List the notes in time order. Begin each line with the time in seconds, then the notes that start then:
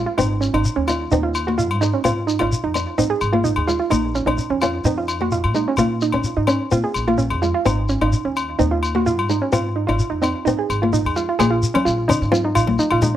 Already playing: G#3
0.06 F4
0.18 G#1 C4 D#4, low agogo, shekere
0.41 C#4, shekere
0.54 G#1 D#4, low agogo
0.65 shekere
0.76 D#2 C#4
0.88 D#4 F4, low agogo, shekere
1.12 D#2 C4 D#4, shekere
1.23 F4
1.35 low agogo, shekere
1.47 A#3 F#4
1.58 F4, shekere
1.70 G#2, low agogo
1.81 G#3 D#4, shekere
1.94 C#4
2.04 G#2 C4 F4, low agogo, shekere
2.27 D#4, shekere
2.39 G#1 D#4 F4, low agogo
2.53 shekere
2.64 F2 D#4
2.74 D#4, low agogo, shekere
2.98 G#2 C4 D#4, shekere
3.10 G#4
3.21 G#1, low agogo, shekere
3.33 A#3 F4
3.44 D#4, shekere
3.56 D#2, low agogo
3.67 G#3 F4, shekere
3.80 F4
3.90 A#1 A#3 D#4, low agogo, shekere
4.15 C#4, shekere
4.26 A#1 C#4 D#4, low agogo
4.38 shekere
4.50 F2 C#4
4.62 C#4 F4, low agogo, shekere
4.84 F2 C4 D#4, shekere
4.98 F4
5.08 low agogo, shekere
5.21 A#3 F#4
5.32 F4, shekere
5.44 A#2, low agogo
5.54 G#3 D#4, shekere
5.68 C#4
5.77 A#2 A#3 F4, low agogo, shekere
6.01 D#4, shekere
6.12 A#1 C#4, low agogo
6.24 shekere
6.37 G#2 D#4
6.47 C#4, low agogo, shekere
6.71 A#2 C4 F4, shekere
6.84 G#4
6.94 A#1, low agogo, shekere
7.08 A#3 F4
7.18 C#4, shekere
7.30 F2, low agogo
7.42 G#3 F4, shekere
7.54 F4
7.65 G#1 C4 D#4, low agogo, shekere
7.89 C#4, shekere
8.01 G#1 D#4, low agogo
8.13 shekere
8.25 D#2 C#4
8.37 low agogo, shekere
8.59 D#2 C4 D#4, shekere
8.71 F4
8.83 low agogo, shekere
8.95 A#3 F#4
9.06 F4, shekere
9.19 G#2, low agogo
9.29 G#3 D#4, shekere
9.42 C#4
9.52 G#2 C4 F4, low agogo, shekere
9.76 D#4
9.87 G#1 D#4 F4, low agogo
9.99 shekere
10.10 F2 D#4
10.22 C4 D#4, low agogo, shekere
10.45 G#2 C4 D#4, shekere
10.59 G#4
10.70 G#1, low agogo, shekere
10.82 A#3 F4
10.93 D#4, shekere
11.05 F2, low agogo
11.16 G#3 F4, shekere
11.29 F4
11.39 A#1 A#3 G#4, low agogo, shekere
11.50 F4
11.63 shekere
11.74 C#4, high conga, low agogo
11.85 A#1 F4, shekere
12.08 C#4 D#4, low conga, low agogo, shekere
12.22 G#2, shekere
12.32 C4 F4, high conga, shekere
12.45 D#4
12.55 A#1 F4, low agogo, shekere
12.67 A#3, high conga
12.79 D#4, shekere
12.91 A#1 F4, low agogo
13.02 G#3 D#4, low conga, shekere